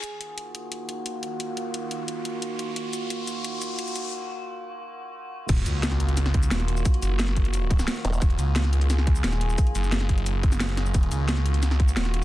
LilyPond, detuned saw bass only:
\new Staff \with { instrumentName = "Detuned saw bass" } { \clef bass \time 4/4 \key ees \minor \tempo 4 = 176 r1 | r1 | r1 | r1 |
ees,,8 des,2~ des,8 ees,,4 | r8 ges,,2~ ges,,8 r4 | ees,,8 des,2~ des,8 ees,,4 | r8 ges,,2.~ ges,,8 |
ees,,8 des,2~ des,8 ees,,4 | }